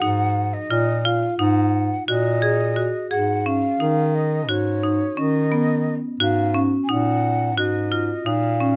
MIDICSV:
0, 0, Header, 1, 4, 480
1, 0, Start_track
1, 0, Tempo, 686499
1, 13, Time_signature, 9, 3, 24, 8
1, 6126, End_track
2, 0, Start_track
2, 0, Title_t, "Flute"
2, 0, Program_c, 0, 73
2, 0, Note_on_c, 0, 78, 95
2, 370, Note_on_c, 0, 75, 78
2, 380, Note_off_c, 0, 78, 0
2, 731, Note_on_c, 0, 77, 78
2, 741, Note_off_c, 0, 75, 0
2, 957, Note_off_c, 0, 77, 0
2, 961, Note_on_c, 0, 78, 71
2, 1420, Note_off_c, 0, 78, 0
2, 1453, Note_on_c, 0, 75, 98
2, 2146, Note_off_c, 0, 75, 0
2, 2167, Note_on_c, 0, 78, 83
2, 2416, Note_on_c, 0, 77, 88
2, 2427, Note_off_c, 0, 78, 0
2, 2896, Note_on_c, 0, 75, 75
2, 2906, Note_off_c, 0, 77, 0
2, 3140, Note_on_c, 0, 73, 81
2, 3150, Note_off_c, 0, 75, 0
2, 3619, Note_on_c, 0, 75, 87
2, 3630, Note_off_c, 0, 73, 0
2, 4171, Note_off_c, 0, 75, 0
2, 4346, Note_on_c, 0, 77, 85
2, 4610, Note_off_c, 0, 77, 0
2, 4777, Note_on_c, 0, 80, 61
2, 4820, Note_on_c, 0, 78, 84
2, 4830, Note_off_c, 0, 80, 0
2, 5295, Note_off_c, 0, 78, 0
2, 5299, Note_on_c, 0, 75, 80
2, 5768, Note_on_c, 0, 77, 83
2, 5778, Note_off_c, 0, 75, 0
2, 6126, Note_off_c, 0, 77, 0
2, 6126, End_track
3, 0, Start_track
3, 0, Title_t, "Marimba"
3, 0, Program_c, 1, 12
3, 12, Note_on_c, 1, 63, 83
3, 275, Note_off_c, 1, 63, 0
3, 493, Note_on_c, 1, 65, 75
3, 625, Note_off_c, 1, 65, 0
3, 734, Note_on_c, 1, 65, 73
3, 865, Note_off_c, 1, 65, 0
3, 973, Note_on_c, 1, 63, 73
3, 1236, Note_off_c, 1, 63, 0
3, 1456, Note_on_c, 1, 66, 76
3, 1587, Note_off_c, 1, 66, 0
3, 1693, Note_on_c, 1, 68, 68
3, 1825, Note_off_c, 1, 68, 0
3, 1932, Note_on_c, 1, 66, 69
3, 2064, Note_off_c, 1, 66, 0
3, 2174, Note_on_c, 1, 68, 70
3, 2306, Note_off_c, 1, 68, 0
3, 2419, Note_on_c, 1, 61, 64
3, 2550, Note_off_c, 1, 61, 0
3, 2658, Note_on_c, 1, 63, 67
3, 2920, Note_off_c, 1, 63, 0
3, 3137, Note_on_c, 1, 66, 68
3, 3268, Note_off_c, 1, 66, 0
3, 3379, Note_on_c, 1, 63, 60
3, 3509, Note_off_c, 1, 63, 0
3, 3616, Note_on_c, 1, 61, 73
3, 3747, Note_off_c, 1, 61, 0
3, 3857, Note_on_c, 1, 59, 67
3, 4119, Note_off_c, 1, 59, 0
3, 4337, Note_on_c, 1, 66, 78
3, 4467, Note_off_c, 1, 66, 0
3, 4576, Note_on_c, 1, 61, 71
3, 4707, Note_off_c, 1, 61, 0
3, 4816, Note_on_c, 1, 63, 72
3, 5078, Note_off_c, 1, 63, 0
3, 5297, Note_on_c, 1, 66, 77
3, 5427, Note_off_c, 1, 66, 0
3, 5535, Note_on_c, 1, 65, 61
3, 5666, Note_off_c, 1, 65, 0
3, 5776, Note_on_c, 1, 63, 72
3, 5907, Note_off_c, 1, 63, 0
3, 6016, Note_on_c, 1, 61, 69
3, 6126, Note_off_c, 1, 61, 0
3, 6126, End_track
4, 0, Start_track
4, 0, Title_t, "Bass clarinet"
4, 0, Program_c, 2, 71
4, 11, Note_on_c, 2, 44, 88
4, 404, Note_off_c, 2, 44, 0
4, 496, Note_on_c, 2, 46, 91
4, 887, Note_off_c, 2, 46, 0
4, 971, Note_on_c, 2, 44, 93
4, 1364, Note_off_c, 2, 44, 0
4, 1454, Note_on_c, 2, 46, 92
4, 2042, Note_off_c, 2, 46, 0
4, 2174, Note_on_c, 2, 44, 79
4, 2566, Note_off_c, 2, 44, 0
4, 2654, Note_on_c, 2, 51, 94
4, 3137, Note_on_c, 2, 44, 81
4, 3147, Note_off_c, 2, 51, 0
4, 3528, Note_off_c, 2, 44, 0
4, 3616, Note_on_c, 2, 51, 83
4, 4203, Note_off_c, 2, 51, 0
4, 4334, Note_on_c, 2, 44, 84
4, 4726, Note_off_c, 2, 44, 0
4, 4816, Note_on_c, 2, 46, 89
4, 5291, Note_on_c, 2, 44, 81
4, 5301, Note_off_c, 2, 46, 0
4, 5683, Note_off_c, 2, 44, 0
4, 5775, Note_on_c, 2, 46, 88
4, 6126, Note_off_c, 2, 46, 0
4, 6126, End_track
0, 0, End_of_file